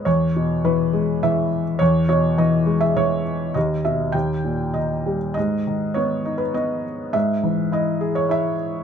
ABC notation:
X:1
M:3/4
L:1/16
Q:1/4=102
K:Elyd
V:1 name="Felt piano"
c4 B4 e3 z | c2 c2 d3 e c4 | d2 e2 =g4 d3 z | d4 c3 B d4 |
e4 d3 c e4 |]
V:2 name="Felt piano" clef=bass
E,,2 B,,2 E,2 G,2 E,4 | E,,2 B,,2 E,2 G,2 E,4 | D,,2 B,,2 D,,2 A,,2 D,2 =G,2 | G,,2 D,2 B,2 D2 B,4 |
G,,2 E,2 E2 G2 E4 |]